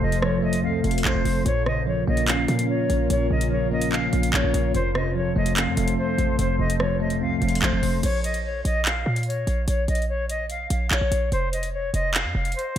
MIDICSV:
0, 0, Header, 1, 6, 480
1, 0, Start_track
1, 0, Key_signature, -5, "minor"
1, 0, Tempo, 410959
1, 1703, Time_signature, 4, 2, 24, 8
1, 14929, End_track
2, 0, Start_track
2, 0, Title_t, "Flute"
2, 0, Program_c, 0, 73
2, 22, Note_on_c, 0, 75, 94
2, 246, Note_off_c, 0, 75, 0
2, 263, Note_on_c, 0, 73, 89
2, 486, Note_off_c, 0, 73, 0
2, 503, Note_on_c, 0, 75, 84
2, 727, Note_off_c, 0, 75, 0
2, 742, Note_on_c, 0, 77, 81
2, 966, Note_off_c, 0, 77, 0
2, 982, Note_on_c, 0, 77, 77
2, 1206, Note_off_c, 0, 77, 0
2, 1224, Note_on_c, 0, 72, 87
2, 1674, Note_off_c, 0, 72, 0
2, 1703, Note_on_c, 0, 73, 112
2, 1926, Note_off_c, 0, 73, 0
2, 1943, Note_on_c, 0, 75, 88
2, 2167, Note_off_c, 0, 75, 0
2, 2183, Note_on_c, 0, 73, 80
2, 2406, Note_off_c, 0, 73, 0
2, 2423, Note_on_c, 0, 75, 96
2, 2646, Note_off_c, 0, 75, 0
2, 2662, Note_on_c, 0, 77, 96
2, 2886, Note_off_c, 0, 77, 0
2, 2901, Note_on_c, 0, 77, 76
2, 3125, Note_off_c, 0, 77, 0
2, 3143, Note_on_c, 0, 73, 81
2, 3594, Note_off_c, 0, 73, 0
2, 3625, Note_on_c, 0, 73, 94
2, 3847, Note_off_c, 0, 73, 0
2, 3863, Note_on_c, 0, 75, 85
2, 4086, Note_off_c, 0, 75, 0
2, 4102, Note_on_c, 0, 73, 80
2, 4326, Note_off_c, 0, 73, 0
2, 4342, Note_on_c, 0, 75, 89
2, 4566, Note_off_c, 0, 75, 0
2, 4582, Note_on_c, 0, 77, 89
2, 4806, Note_off_c, 0, 77, 0
2, 4825, Note_on_c, 0, 77, 78
2, 5047, Note_off_c, 0, 77, 0
2, 5062, Note_on_c, 0, 73, 92
2, 5513, Note_off_c, 0, 73, 0
2, 5543, Note_on_c, 0, 72, 101
2, 5766, Note_off_c, 0, 72, 0
2, 5782, Note_on_c, 0, 75, 89
2, 6006, Note_off_c, 0, 75, 0
2, 6022, Note_on_c, 0, 73, 88
2, 6246, Note_off_c, 0, 73, 0
2, 6264, Note_on_c, 0, 75, 90
2, 6487, Note_off_c, 0, 75, 0
2, 6503, Note_on_c, 0, 77, 85
2, 6726, Note_off_c, 0, 77, 0
2, 6741, Note_on_c, 0, 77, 77
2, 6965, Note_off_c, 0, 77, 0
2, 6982, Note_on_c, 0, 72, 84
2, 7433, Note_off_c, 0, 72, 0
2, 7462, Note_on_c, 0, 72, 92
2, 7686, Note_off_c, 0, 72, 0
2, 7702, Note_on_c, 0, 75, 90
2, 7926, Note_off_c, 0, 75, 0
2, 7942, Note_on_c, 0, 73, 88
2, 8166, Note_off_c, 0, 73, 0
2, 8183, Note_on_c, 0, 75, 87
2, 8406, Note_off_c, 0, 75, 0
2, 8420, Note_on_c, 0, 77, 83
2, 8645, Note_off_c, 0, 77, 0
2, 8662, Note_on_c, 0, 77, 76
2, 8886, Note_off_c, 0, 77, 0
2, 8903, Note_on_c, 0, 72, 86
2, 9354, Note_off_c, 0, 72, 0
2, 9381, Note_on_c, 0, 73, 107
2, 9605, Note_off_c, 0, 73, 0
2, 9623, Note_on_c, 0, 75, 85
2, 9846, Note_off_c, 0, 75, 0
2, 9861, Note_on_c, 0, 73, 77
2, 10086, Note_off_c, 0, 73, 0
2, 10101, Note_on_c, 0, 75, 89
2, 10325, Note_off_c, 0, 75, 0
2, 10341, Note_on_c, 0, 77, 92
2, 10565, Note_off_c, 0, 77, 0
2, 10580, Note_on_c, 0, 77, 75
2, 10805, Note_off_c, 0, 77, 0
2, 10823, Note_on_c, 0, 73, 74
2, 11274, Note_off_c, 0, 73, 0
2, 11304, Note_on_c, 0, 73, 93
2, 11527, Note_off_c, 0, 73, 0
2, 11542, Note_on_c, 0, 75, 85
2, 11766, Note_off_c, 0, 75, 0
2, 11782, Note_on_c, 0, 73, 81
2, 12006, Note_off_c, 0, 73, 0
2, 12021, Note_on_c, 0, 75, 85
2, 12246, Note_off_c, 0, 75, 0
2, 12261, Note_on_c, 0, 77, 84
2, 12485, Note_off_c, 0, 77, 0
2, 12504, Note_on_c, 0, 77, 76
2, 12727, Note_off_c, 0, 77, 0
2, 12741, Note_on_c, 0, 73, 92
2, 13193, Note_off_c, 0, 73, 0
2, 13221, Note_on_c, 0, 72, 100
2, 13445, Note_off_c, 0, 72, 0
2, 13461, Note_on_c, 0, 75, 87
2, 13685, Note_off_c, 0, 75, 0
2, 13702, Note_on_c, 0, 73, 87
2, 13926, Note_off_c, 0, 73, 0
2, 13944, Note_on_c, 0, 75, 90
2, 14167, Note_off_c, 0, 75, 0
2, 14181, Note_on_c, 0, 77, 84
2, 14405, Note_off_c, 0, 77, 0
2, 14421, Note_on_c, 0, 77, 78
2, 14645, Note_off_c, 0, 77, 0
2, 14662, Note_on_c, 0, 72, 78
2, 14929, Note_off_c, 0, 72, 0
2, 14929, End_track
3, 0, Start_track
3, 0, Title_t, "Ambient pad"
3, 0, Program_c, 1, 92
3, 0, Note_on_c, 1, 53, 82
3, 0, Note_on_c, 1, 65, 73
3, 0, Note_on_c, 1, 69, 72
3, 0, Note_on_c, 1, 72, 88
3, 1656, Note_off_c, 1, 65, 0
3, 1664, Note_off_c, 1, 53, 0
3, 1664, Note_off_c, 1, 69, 0
3, 1664, Note_off_c, 1, 72, 0
3, 1702, Note_on_c, 1, 61, 78
3, 1702, Note_on_c, 1, 70, 91
3, 1703, Note_on_c, 1, 65, 73
3, 5504, Note_off_c, 1, 61, 0
3, 5504, Note_off_c, 1, 70, 0
3, 5542, Note_on_c, 1, 53, 81
3, 5542, Note_on_c, 1, 69, 74
3, 5543, Note_on_c, 1, 72, 91
3, 9336, Note_off_c, 1, 65, 0
3, 9344, Note_off_c, 1, 53, 0
3, 9344, Note_off_c, 1, 69, 0
3, 9344, Note_off_c, 1, 72, 0
3, 14929, End_track
4, 0, Start_track
4, 0, Title_t, "Tine electric piano"
4, 0, Program_c, 2, 4
4, 0, Control_c, 2, 64, 127
4, 0, Note_on_c, 2, 41, 89
4, 0, Note_on_c, 2, 48, 81
4, 0, Note_on_c, 2, 53, 85
4, 0, Note_on_c, 2, 57, 89
4, 0, Note_on_c, 2, 60, 89
4, 30, Note_off_c, 2, 48, 0
4, 30, Note_on_c, 2, 48, 71
4, 262, Note_off_c, 2, 57, 0
4, 265, Note_off_c, 2, 53, 0
4, 265, Note_on_c, 2, 53, 85
4, 497, Note_on_c, 2, 57, 95
4, 746, Note_off_c, 2, 60, 0
4, 746, Note_on_c, 2, 60, 81
4, 973, Note_off_c, 2, 57, 0
4, 982, Note_off_c, 2, 41, 0
4, 987, Note_on_c, 2, 57, 88
4, 1226, Note_off_c, 2, 48, 0
4, 1464, Note_off_c, 2, 53, 0
4, 1695, Note_on_c, 2, 46, 91
4, 1704, Note_off_c, 2, 60, 0
4, 1705, Note_off_c, 2, 57, 0
4, 1716, Control_c, 2, 64, 0
4, 1894, Control_c, 2, 64, 127
4, 1946, Note_on_c, 2, 49, 75
4, 2182, Note_on_c, 2, 53, 83
4, 2424, Note_on_c, 2, 58, 105
4, 2658, Note_on_c, 2, 61, 90
4, 2889, Note_off_c, 2, 58, 0
4, 2899, Note_off_c, 2, 46, 0
4, 2903, Note_on_c, 2, 58, 92
4, 3144, Note_off_c, 2, 49, 0
4, 3383, Note_off_c, 2, 53, 0
4, 3620, Note_on_c, 2, 46, 89
4, 3859, Note_on_c, 2, 49, 77
4, 3860, Note_off_c, 2, 61, 0
4, 4100, Note_on_c, 2, 53, 82
4, 4103, Note_off_c, 2, 58, 0
4, 4341, Note_on_c, 2, 58, 93
4, 4573, Note_on_c, 2, 61, 92
4, 4813, Note_off_c, 2, 58, 0
4, 4822, Note_off_c, 2, 46, 0
4, 4827, Note_on_c, 2, 58, 83
4, 5061, Note_off_c, 2, 49, 0
4, 5301, Note_off_c, 2, 53, 0
4, 5538, Note_off_c, 2, 61, 0
4, 5545, Note_off_c, 2, 58, 0
4, 5548, Note_on_c, 2, 41, 86
4, 5558, Control_c, 2, 64, 0
4, 5773, Note_on_c, 2, 48, 84
4, 5791, Control_c, 2, 64, 127
4, 6024, Note_on_c, 2, 53, 88
4, 6258, Note_on_c, 2, 57, 94
4, 6501, Note_on_c, 2, 60, 87
4, 6727, Note_off_c, 2, 57, 0
4, 6741, Note_on_c, 2, 57, 91
4, 6745, Note_off_c, 2, 41, 0
4, 6978, Note_off_c, 2, 48, 0
4, 7223, Note_off_c, 2, 53, 0
4, 7460, Note_on_c, 2, 41, 87
4, 7702, Note_off_c, 2, 60, 0
4, 7708, Note_on_c, 2, 48, 73
4, 7942, Note_off_c, 2, 57, 0
4, 7943, Note_on_c, 2, 53, 86
4, 8176, Note_on_c, 2, 57, 94
4, 8426, Note_on_c, 2, 60, 82
4, 8653, Note_off_c, 2, 57, 0
4, 8661, Note_off_c, 2, 41, 0
4, 8667, Note_on_c, 2, 57, 90
4, 8905, Note_off_c, 2, 48, 0
4, 9143, Note_off_c, 2, 53, 0
4, 9384, Note_off_c, 2, 60, 0
4, 9385, Note_off_c, 2, 57, 0
4, 9399, Control_c, 2, 64, 0
4, 14929, End_track
5, 0, Start_track
5, 0, Title_t, "808-style bass"
5, 0, Program_c, 3, 38
5, 23, Note_on_c, 3, 29, 110
5, 742, Note_on_c, 3, 36, 99
5, 760, Note_off_c, 3, 29, 0
5, 971, Note_off_c, 3, 36, 0
5, 983, Note_on_c, 3, 29, 102
5, 1213, Note_off_c, 3, 29, 0
5, 1223, Note_on_c, 3, 33, 113
5, 1338, Note_off_c, 3, 33, 0
5, 1343, Note_on_c, 3, 29, 104
5, 1455, Note_off_c, 3, 29, 0
5, 1462, Note_on_c, 3, 29, 109
5, 1693, Note_off_c, 3, 29, 0
5, 1702, Note_on_c, 3, 34, 117
5, 2394, Note_off_c, 3, 34, 0
5, 2422, Note_on_c, 3, 34, 103
5, 2883, Note_off_c, 3, 34, 0
5, 2902, Note_on_c, 3, 46, 108
5, 3363, Note_off_c, 3, 46, 0
5, 3382, Note_on_c, 3, 34, 106
5, 3613, Note_off_c, 3, 34, 0
5, 3621, Note_on_c, 3, 34, 116
5, 3852, Note_off_c, 3, 34, 0
5, 3861, Note_on_c, 3, 34, 106
5, 4784, Note_off_c, 3, 34, 0
5, 4822, Note_on_c, 3, 34, 106
5, 5053, Note_off_c, 3, 34, 0
5, 5062, Note_on_c, 3, 34, 111
5, 5177, Note_off_c, 3, 34, 0
5, 5183, Note_on_c, 3, 34, 101
5, 5298, Note_off_c, 3, 34, 0
5, 5303, Note_on_c, 3, 34, 107
5, 5533, Note_off_c, 3, 34, 0
5, 5542, Note_on_c, 3, 29, 113
5, 6234, Note_off_c, 3, 29, 0
5, 6263, Note_on_c, 3, 29, 108
5, 6623, Note_on_c, 3, 41, 100
5, 6640, Note_off_c, 3, 29, 0
5, 6737, Note_off_c, 3, 41, 0
5, 6743, Note_on_c, 3, 29, 108
5, 6973, Note_off_c, 3, 29, 0
5, 7222, Note_on_c, 3, 33, 107
5, 7453, Note_off_c, 3, 33, 0
5, 7463, Note_on_c, 3, 29, 116
5, 7693, Note_off_c, 3, 29, 0
5, 7702, Note_on_c, 3, 29, 109
5, 8423, Note_on_c, 3, 36, 103
5, 8440, Note_off_c, 3, 29, 0
5, 8651, Note_off_c, 3, 36, 0
5, 8663, Note_on_c, 3, 29, 106
5, 8893, Note_off_c, 3, 29, 0
5, 8902, Note_on_c, 3, 33, 114
5, 9015, Note_off_c, 3, 33, 0
5, 9022, Note_on_c, 3, 29, 109
5, 9135, Note_off_c, 3, 29, 0
5, 9142, Note_on_c, 3, 29, 107
5, 9373, Note_off_c, 3, 29, 0
5, 9382, Note_on_c, 3, 34, 109
5, 10074, Note_off_c, 3, 34, 0
5, 10102, Note_on_c, 3, 34, 102
5, 10563, Note_off_c, 3, 34, 0
5, 10582, Note_on_c, 3, 46, 103
5, 11043, Note_off_c, 3, 46, 0
5, 11063, Note_on_c, 3, 34, 104
5, 11293, Note_off_c, 3, 34, 0
5, 11302, Note_on_c, 3, 34, 116
5, 11533, Note_off_c, 3, 34, 0
5, 11542, Note_on_c, 3, 34, 107
5, 12464, Note_off_c, 3, 34, 0
5, 12502, Note_on_c, 3, 34, 103
5, 12733, Note_off_c, 3, 34, 0
5, 12743, Note_on_c, 3, 34, 109
5, 12858, Note_off_c, 3, 34, 0
5, 12863, Note_on_c, 3, 34, 99
5, 12975, Note_off_c, 3, 34, 0
5, 12982, Note_on_c, 3, 34, 108
5, 13213, Note_off_c, 3, 34, 0
5, 13223, Note_on_c, 3, 29, 118
5, 13914, Note_off_c, 3, 29, 0
5, 13942, Note_on_c, 3, 29, 105
5, 14303, Note_on_c, 3, 41, 102
5, 14320, Note_off_c, 3, 29, 0
5, 14417, Note_off_c, 3, 41, 0
5, 14423, Note_on_c, 3, 29, 107
5, 14653, Note_off_c, 3, 29, 0
5, 14929, End_track
6, 0, Start_track
6, 0, Title_t, "Drums"
6, 143, Note_on_c, 9, 42, 89
6, 260, Note_off_c, 9, 42, 0
6, 262, Note_on_c, 9, 37, 106
6, 379, Note_off_c, 9, 37, 0
6, 616, Note_on_c, 9, 42, 84
6, 733, Note_off_c, 9, 42, 0
6, 983, Note_on_c, 9, 42, 48
6, 1063, Note_off_c, 9, 42, 0
6, 1063, Note_on_c, 9, 42, 65
6, 1143, Note_off_c, 9, 42, 0
6, 1143, Note_on_c, 9, 42, 82
6, 1224, Note_on_c, 9, 39, 116
6, 1260, Note_off_c, 9, 42, 0
6, 1340, Note_off_c, 9, 39, 0
6, 1465, Note_on_c, 9, 46, 60
6, 1582, Note_off_c, 9, 46, 0
6, 1702, Note_on_c, 9, 42, 80
6, 1819, Note_off_c, 9, 42, 0
6, 1943, Note_on_c, 9, 37, 95
6, 2060, Note_off_c, 9, 37, 0
6, 2536, Note_on_c, 9, 42, 84
6, 2653, Note_off_c, 9, 42, 0
6, 2660, Note_on_c, 9, 42, 71
6, 2663, Note_on_c, 9, 39, 110
6, 2777, Note_off_c, 9, 42, 0
6, 2780, Note_off_c, 9, 39, 0
6, 2901, Note_on_c, 9, 42, 86
6, 3018, Note_off_c, 9, 42, 0
6, 3023, Note_on_c, 9, 42, 75
6, 3140, Note_off_c, 9, 42, 0
6, 3384, Note_on_c, 9, 42, 84
6, 3501, Note_off_c, 9, 42, 0
6, 3622, Note_on_c, 9, 42, 78
6, 3739, Note_off_c, 9, 42, 0
6, 3983, Note_on_c, 9, 42, 86
6, 4100, Note_off_c, 9, 42, 0
6, 4456, Note_on_c, 9, 42, 84
6, 4573, Note_off_c, 9, 42, 0
6, 4582, Note_on_c, 9, 39, 67
6, 4699, Note_off_c, 9, 39, 0
6, 4821, Note_on_c, 9, 42, 79
6, 4938, Note_off_c, 9, 42, 0
6, 4943, Note_on_c, 9, 42, 74
6, 5060, Note_off_c, 9, 42, 0
6, 5063, Note_on_c, 9, 39, 116
6, 5179, Note_off_c, 9, 39, 0
6, 5304, Note_on_c, 9, 42, 83
6, 5421, Note_off_c, 9, 42, 0
6, 5543, Note_on_c, 9, 42, 77
6, 5659, Note_off_c, 9, 42, 0
6, 5783, Note_on_c, 9, 37, 98
6, 5900, Note_off_c, 9, 37, 0
6, 6375, Note_on_c, 9, 42, 85
6, 6492, Note_off_c, 9, 42, 0
6, 6499, Note_on_c, 9, 42, 71
6, 6502, Note_on_c, 9, 39, 114
6, 6616, Note_off_c, 9, 42, 0
6, 6619, Note_off_c, 9, 39, 0
6, 6741, Note_on_c, 9, 42, 84
6, 6858, Note_off_c, 9, 42, 0
6, 6863, Note_on_c, 9, 42, 74
6, 6980, Note_off_c, 9, 42, 0
6, 7224, Note_on_c, 9, 42, 78
6, 7341, Note_off_c, 9, 42, 0
6, 7462, Note_on_c, 9, 42, 78
6, 7578, Note_off_c, 9, 42, 0
6, 7823, Note_on_c, 9, 42, 86
6, 7940, Note_off_c, 9, 42, 0
6, 7942, Note_on_c, 9, 37, 104
6, 8058, Note_off_c, 9, 37, 0
6, 8296, Note_on_c, 9, 42, 81
6, 8412, Note_off_c, 9, 42, 0
6, 8663, Note_on_c, 9, 42, 51
6, 8743, Note_off_c, 9, 42, 0
6, 8743, Note_on_c, 9, 42, 66
6, 8822, Note_off_c, 9, 42, 0
6, 8822, Note_on_c, 9, 42, 85
6, 8902, Note_on_c, 9, 39, 121
6, 8939, Note_off_c, 9, 42, 0
6, 9019, Note_off_c, 9, 39, 0
6, 9144, Note_on_c, 9, 46, 58
6, 9261, Note_off_c, 9, 46, 0
6, 9381, Note_on_c, 9, 42, 79
6, 9382, Note_on_c, 9, 49, 96
6, 9498, Note_off_c, 9, 42, 0
6, 9499, Note_off_c, 9, 49, 0
6, 9627, Note_on_c, 9, 42, 72
6, 9742, Note_off_c, 9, 42, 0
6, 9742, Note_on_c, 9, 42, 85
6, 9859, Note_off_c, 9, 42, 0
6, 10104, Note_on_c, 9, 42, 66
6, 10221, Note_off_c, 9, 42, 0
6, 10342, Note_on_c, 9, 39, 111
6, 10458, Note_off_c, 9, 39, 0
6, 10702, Note_on_c, 9, 42, 57
6, 10782, Note_off_c, 9, 42, 0
6, 10782, Note_on_c, 9, 42, 56
6, 10863, Note_off_c, 9, 42, 0
6, 10863, Note_on_c, 9, 42, 55
6, 10979, Note_off_c, 9, 42, 0
6, 11064, Note_on_c, 9, 42, 76
6, 11181, Note_off_c, 9, 42, 0
6, 11302, Note_on_c, 9, 42, 79
6, 11419, Note_off_c, 9, 42, 0
6, 11543, Note_on_c, 9, 42, 69
6, 11623, Note_off_c, 9, 42, 0
6, 11623, Note_on_c, 9, 42, 54
6, 11703, Note_off_c, 9, 42, 0
6, 11703, Note_on_c, 9, 42, 41
6, 11819, Note_off_c, 9, 42, 0
6, 12025, Note_on_c, 9, 42, 67
6, 12142, Note_off_c, 9, 42, 0
6, 12260, Note_on_c, 9, 42, 74
6, 12377, Note_off_c, 9, 42, 0
6, 12502, Note_on_c, 9, 42, 85
6, 12618, Note_off_c, 9, 42, 0
6, 12743, Note_on_c, 9, 39, 113
6, 12860, Note_off_c, 9, 39, 0
6, 12985, Note_on_c, 9, 42, 81
6, 13101, Note_off_c, 9, 42, 0
6, 13222, Note_on_c, 9, 42, 78
6, 13339, Note_off_c, 9, 42, 0
6, 13467, Note_on_c, 9, 42, 71
6, 13583, Note_off_c, 9, 42, 0
6, 13583, Note_on_c, 9, 42, 87
6, 13700, Note_off_c, 9, 42, 0
6, 13945, Note_on_c, 9, 42, 66
6, 14062, Note_off_c, 9, 42, 0
6, 14182, Note_on_c, 9, 39, 109
6, 14299, Note_off_c, 9, 39, 0
6, 14543, Note_on_c, 9, 42, 57
6, 14622, Note_off_c, 9, 42, 0
6, 14622, Note_on_c, 9, 42, 57
6, 14702, Note_off_c, 9, 42, 0
6, 14702, Note_on_c, 9, 42, 57
6, 14819, Note_off_c, 9, 42, 0
6, 14929, End_track
0, 0, End_of_file